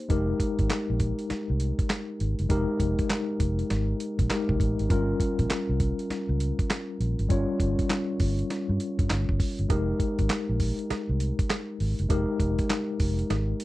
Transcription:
Already playing: C5
0.09 F1 G#3 D#4 G4 A#4, kick, closed hi-hat
0.40 kick, closed hi-hat
0.59 G#1, kick, closed hi-hat
0.70 snare, clap, closed hi-hat
0.90 A#1
1.00 kick, closed hi-hat
1.19 closed hi-hat
1.30 muted fingered electric bass stroke, snare, closed hi-hat
1.50 C2
1.60 closed hi-hat
1.79 kick, closed hi-hat
1.90 snare, clap, closed hi-hat
2.20 G#1, closed hi-hat
2.39 F#1, closed hi-hat
2.49 F1 G#3 D#4 G4 A#4, kick, closed hi-hat
2.80 F1, kick, closed hi-hat
2.99 kick, closed hi-hat
3.10 snare, clap, closed hi-hat
3.40 F1, kick, closed hi-hat
3.59 closed hi-hat
3.70 G#1, snare, closed hi-hat
4.00 closed hi-hat
4.19 A#1, kick, closed hi-hat
4.29 G#3 D#4 G4 A#4, snare, clap, closed hi-hat
4.49 C2, kick
4.60 A1, kick, closed hi-hat
4.79 G#1, closed hi-hat
4.89 G1 G3 C#4 F4 A#4, kick, closed hi-hat
5.20 kick, closed hi-hat
5.39 A#1, kick, closed hi-hat
5.50 muted fingered electric bass stroke, snare, clap, closed hi-hat
5.69 C2
5.80 kick, closed hi-hat
5.99 closed hi-hat
6.10 muted fingered electric bass stroke, snare, closed hi-hat
6.29 C#2
6.40 closed hi-hat
6.59 kick, closed hi-hat
6.70 snare, clap, closed hi-hat
7.00 A#1, closed hi-hat
7.19 G#1, closed hi-hat
7.29 G1 G3 C#4 F4 C#5, kick, closed hi-hat
7.60 G1, kick, closed hi-hat
7.79 kick, closed hi-hat
7.90 snare, clap, closed hi-hat
8.20 G1, kick, open hi-hat
8.39 closed hi-hat
8.50 snare, closed hi-hat
8.69 G2
8.80 closed hi-hat
8.99 G2, kick, closed hi-hat
9.10 G1, snare, clap, closed hi-hat
9.29 G1, kick
9.40 kick, open hi-hat
9.59 G1, closed hi-hat
9.69 F1 G#3 D#4 G4 A#4, kick, closed hi-hat, cowbell
10.00 kick, closed hi-hat
10.19 G#1, kick, closed hi-hat
10.29 muted fingered electric bass stroke, snare, clap, closed hi-hat, cowbell
10.49 A#1
10.60 kick, open hi-hat
10.79 closed hi-hat
10.90 muted fingered electric bass stroke, snare, closed hi-hat, cowbell
11.09 C2
11.20 closed hi-hat
11.39 kick, closed hi-hat
11.50 snare, clap, closed hi-hat, cowbell
11.80 G#1, open hi-hat
11.99 F#1, closed hi-hat
12.09 F1 G#3 D#4 G4 A#4, kick, closed hi-hat, cowbell
12.40 F1, kick, closed hi-hat
12.59 kick, closed hi-hat
12.70 snare, clap, closed hi-hat, cowbell
13.00 F1, kick, open hi-hat
13.19 closed hi-hat
13.30 G#1, snare, closed hi-hat, cowbell
13.60 closed hi-hat

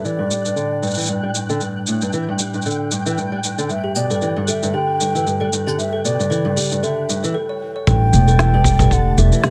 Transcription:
Already playing: A2 G3 D4 G5 F#6
0.05 E3 D5, shaker
0.19 G2
0.30 G3, shaker
0.45 G2, shaker
0.56 D3, shaker
0.82 G2, shaker
0.87 shaker
0.91 shaker
0.94 E3, shaker
0.98 shaker
1.00 shaker
1.03 shaker
1.06 G2, shaker
1.09 shaker
1.23 G3
1.35 G2, shaker
1.49 D3, shaker
1.61 G2, shaker
1.87 A2, shaker
2.01 G2, shaker
2.13 E3, shaker
2.29 G2
2.39 G3, shaker
2.54 G2, shaker
2.62 shaker
2.66 D3, shaker
2.71 shaker
2.91 G2, shaker
3.06 E3, shaker
3.18 G2, shaker
3.32 G3
3.44 G2, shaker
3.58 D3, shaker
3.69 G2 D3 E5 G5, shaker
3.84 G4
3.96 B2 D5, shaker
4.10 G2 A4, shaker
4.22 E3, shaker
4.36 G2
4.48 G3 A4 E5, shaker
4.63 G2, shaker
4.74 D3 G4 G5
5.00 G2 A4, shaker
5.15 E3, shaker
5.26 G2, shaker
5.40 G3 A4
5.53 G2, shaker
5.66 D3 G4, shaker
5.78 G2 C#3 E5, shaker
5.93 A4
6.04 B2 D5, shaker
6.19 G2, shaker
6.30 E3 A4, shaker
6.45 G2
6.56 G3 G4, shaker
6.60 shaker
6.63 shaker
6.66 shaker
6.69 G2, shaker
6.72 shaker
6.83 D3 A4 E5, shaker
7.09 G2, shaker
7.23 E3 B4, shaker
7.34 A4
7.49 C#5
7.76 C#5
7.86 A1 G2 A3 G4 A4 D5 G5 A5 A6, kick, shaker
8.13 E1 A2, mid tom, shaker
8.28 G2 A4, shaker
8.39 E3, snare, shaker
8.54 G2 G4
8.64 G3, kick, shaker
8.79 G2 A4, kick, mid tom, shaker
8.91 D3 F#5, kick, shaker
9.18 E1 G2 A4 E5, shaker
9.32 E3, shaker
9.43 G2 G4, snare, mid tom, shaker

